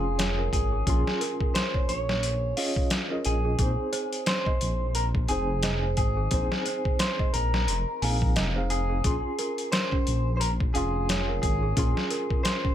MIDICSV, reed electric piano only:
0, 0, Header, 1, 2, 480
1, 0, Start_track
1, 0, Key_signature, -5, "minor"
1, 0, Tempo, 681818
1, 608, Time_signature, 4, 2, 24, 8
1, 8974, End_track
2, 0, Start_track
2, 0, Title_t, "Reed electric piano"
2, 0, Program_c, 0, 4
2, 0, Control_c, 0, 64, 127
2, 0, Note_on_c, 0, 61, 83
2, 0, Note_on_c, 0, 65, 71
2, 0, Note_on_c, 0, 68, 74
2, 0, Note_on_c, 0, 84, 90
2, 584, Note_off_c, 0, 61, 0
2, 587, Note_off_c, 0, 65, 0
2, 590, Note_off_c, 0, 68, 0
2, 591, Note_off_c, 0, 84, 0
2, 614, Note_on_c, 0, 61, 87
2, 622, Note_on_c, 0, 65, 84
2, 628, Note_on_c, 0, 68, 83
2, 631, Note_on_c, 0, 84, 98
2, 1787, Note_off_c, 0, 61, 0
2, 1791, Note_off_c, 0, 65, 0
2, 1794, Note_off_c, 0, 68, 0
2, 1795, Note_off_c, 0, 84, 0
2, 1812, Note_on_c, 0, 61, 87
2, 1814, Note_on_c, 0, 65, 81
2, 1817, Note_on_c, 0, 68, 82
2, 1820, Note_on_c, 0, 75, 92
2, 2155, Note_off_c, 0, 61, 0
2, 2156, Note_off_c, 0, 65, 0
2, 2158, Note_off_c, 0, 68, 0
2, 2159, Note_off_c, 0, 75, 0
2, 2190, Note_on_c, 0, 61, 73
2, 2194, Note_on_c, 0, 65, 65
2, 2198, Note_on_c, 0, 68, 67
2, 2198, Note_on_c, 0, 75, 83
2, 2506, Note_off_c, 0, 61, 0
2, 2508, Note_off_c, 0, 65, 0
2, 2510, Note_off_c, 0, 68, 0
2, 2510, Note_off_c, 0, 75, 0
2, 2532, Note_on_c, 0, 60, 82
2, 2535, Note_on_c, 0, 63, 75
2, 2536, Control_c, 0, 64, 0
2, 2540, Note_on_c, 0, 68, 76
2, 2548, Note_on_c, 0, 72, 88
2, 2672, Control_c, 0, 64, 127
2, 3706, Note_off_c, 0, 60, 0
2, 3707, Note_off_c, 0, 63, 0
2, 3710, Note_off_c, 0, 68, 0
2, 3714, Note_off_c, 0, 72, 0
2, 3728, Note_on_c, 0, 60, 78
2, 3733, Note_on_c, 0, 63, 77
2, 3739, Note_on_c, 0, 68, 77
2, 3747, Note_on_c, 0, 72, 89
2, 4424, Note_off_c, 0, 60, 0
2, 4426, Note_off_c, 0, 63, 0
2, 4429, Note_off_c, 0, 68, 0
2, 4433, Note_off_c, 0, 72, 0
2, 4444, Note_on_c, 0, 60, 88
2, 4452, Note_on_c, 0, 63, 79
2, 4457, Note_on_c, 0, 68, 86
2, 4465, Note_on_c, 0, 72, 97
2, 5622, Note_off_c, 0, 60, 0
2, 5626, Note_off_c, 0, 63, 0
2, 5628, Note_off_c, 0, 68, 0
2, 5632, Note_off_c, 0, 72, 0
2, 5656, Note_on_c, 0, 60, 84
2, 5657, Note_on_c, 0, 63, 74
2, 5661, Note_on_c, 0, 68, 80
2, 5662, Note_on_c, 0, 77, 96
2, 5997, Note_off_c, 0, 60, 0
2, 5998, Note_off_c, 0, 63, 0
2, 6000, Note_off_c, 0, 68, 0
2, 6000, Note_off_c, 0, 77, 0
2, 6031, Note_on_c, 0, 63, 67
2, 6032, Note_on_c, 0, 60, 74
2, 6037, Note_on_c, 0, 68, 70
2, 6041, Note_on_c, 0, 77, 88
2, 6346, Note_off_c, 0, 63, 0
2, 6347, Note_off_c, 0, 60, 0
2, 6349, Note_off_c, 0, 68, 0
2, 6351, Note_off_c, 0, 77, 0
2, 6369, Note_on_c, 0, 61, 74
2, 6372, Note_on_c, 0, 65, 68
2, 6377, Control_c, 0, 64, 0
2, 6379, Note_on_c, 0, 68, 79
2, 6382, Note_on_c, 0, 84, 89
2, 6488, Control_c, 0, 64, 127
2, 7544, Note_off_c, 0, 61, 0
2, 7546, Note_off_c, 0, 65, 0
2, 7549, Note_off_c, 0, 68, 0
2, 7551, Note_off_c, 0, 84, 0
2, 7566, Note_on_c, 0, 61, 87
2, 7574, Note_on_c, 0, 65, 80
2, 7578, Note_on_c, 0, 68, 71
2, 7586, Note_on_c, 0, 84, 90
2, 8263, Note_off_c, 0, 61, 0
2, 8267, Note_off_c, 0, 65, 0
2, 8269, Note_off_c, 0, 68, 0
2, 8273, Note_off_c, 0, 84, 0
2, 8286, Note_on_c, 0, 61, 87
2, 8290, Note_on_c, 0, 65, 80
2, 8295, Note_on_c, 0, 68, 77
2, 8302, Note_on_c, 0, 84, 99
2, 8974, Note_off_c, 0, 61, 0
2, 8974, Note_off_c, 0, 65, 0
2, 8974, Note_off_c, 0, 68, 0
2, 8974, Note_off_c, 0, 84, 0
2, 8974, End_track
0, 0, End_of_file